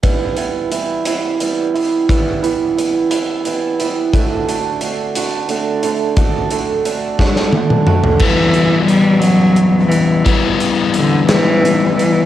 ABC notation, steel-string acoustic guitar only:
X:1
M:6/8
L:1/8
Q:3/8=59
K:Em
V:1 name="Steel-string acoustic guitar"
[E,G,B,E] [E,G,B,E] [E,G,B,E] [E,G,B,E] [E,G,B,E] [E,G,B,E] | [E,G,B,E] [E,G,B,E] [E,G,B,E] [E,G,B,E] [E,G,B,E] [E,G,B,E] | [D,A,DF] [D,A,DF] [D,A,DF] [D,A,DF] [D,A,DF] [D,A,DF] | [D,A,DF] [D,A,DF] [D,A,DF] [D,A,DF] [D,A,DF] [D,A,DF] |
z2 B,2 B, G, | E,,2 B, G, B, G, |]